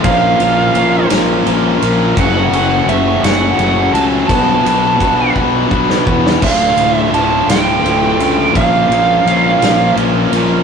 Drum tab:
CC |------------|------------|------------|x-----------|
RD |x-x-x-x-x-x-|x-x-x-x-x-x-|x-x-x-------|--x-x-x-x-x-|
SD |------o-----|------o-----|---------o-o|------o-----|
BD |o-----------|o-----------|o---o-o-o-o-|o-----------|

CC |------------|
RD |x-x-x-x-x-x-|
SD |------o-----|
BD |o-----------|